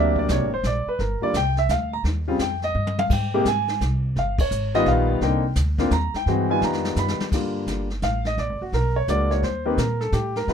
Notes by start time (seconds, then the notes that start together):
Already playing: D2 C3 F#3 A#3 D4 E5
0.16 D5, kick
0.28 C2 C#5, kick, snare, hi-hat pedal
0.40 A1
0.52 F#1 C5
0.64 A#1 D5, kick, snare, hi-hat pedal
0.87 B4, muted upright bass stroke
0.99 G1 A#4, brush sweep, kick, snare
1.22 D3 G3 A#3 F4 D5, muted upright bass stroke
1.34 C2 G5, kick, snare, hi-hat pedal
1.57 E5, snare
1.69 D2 F5, kick, snare, hi-hat pedal
1.93 A#5
2.04 D#2, brush sweep, kick, snare
2.28 C#3 G3 C4 F4
2.39 F2 G5, kick, snare, hi-hat pedal
2.62 D#5, snare
2.75 G2
2.87 high tom
2.99 F5, high tom
3.10 G#2 G5, brush sweep, kick, snare, crash
3.34 C3 G#3 A#3 G4
3.45 G#1 G#5, kick, snare, hi-hat pedal
3.68 snare
3.81 C2, kick, snare, hi-hat pedal
4.16 G1 F5, brush sweep, kick, snare
4.39 C#5, kick, crash
4.51 G#1, hi-hat pedal
4.74 D#3 G3 B3 F4 D#5, snare
4.86 A#1 F5, kick, snare
5.21 C2 D3 A#3 C4 D#4 G5, brush sweep, kick, snare
5.55 D2, kick, snare, hi-hat pedal
5.78 D3 A#3 C4 F4, kick, snare
5.91 D#2 A#5, kick, snare, hi-hat pedal
6.14 G5, muted upright bass stroke, snare
6.26 G2 E3 G#3 C4 F#4, brush sweep, kick, snare
6.50 D#3 G3 B3 F4 G#5
6.61 F2 A#5, snare
6.73 snare
6.85 snare
6.96 F#2 B5, snare, hi-hat pedal
7.08 snare
7.19 muted upright bass stroke, snare
7.32 G2 D3 G3 A#3 F4, brush sweep, kick, snare, crash
7.67 G1, kick, snare, hi-hat pedal
7.90 snare
8.02 A1 F5, kick, snare, hi-hat pedal
8.25 D#5, snare
8.37 A#1 D5, brush sweep, kick, snare
8.49 G#1
8.61 F#1 F#4
8.73 B1 A#4, kick, snare
8.96 C#5
9.08 C#2 G#3 A#3 D4 F#4 D5, kick, snare, hi-hat pedal
9.31 C#5, snare
9.42 D#2 C5, brush sweep, kick, snare
9.65 D#3 A#3 C4 G4 B4
9.78 A#2 A#4, kick, snare, hi-hat pedal
10.01 A4, snare
10.12 A2 G4, kick, snare, hi-hat pedal
10.36 A#4, snare
10.48 G2 D#3 G3 B3 F4 B4, brush sweep, kick, snare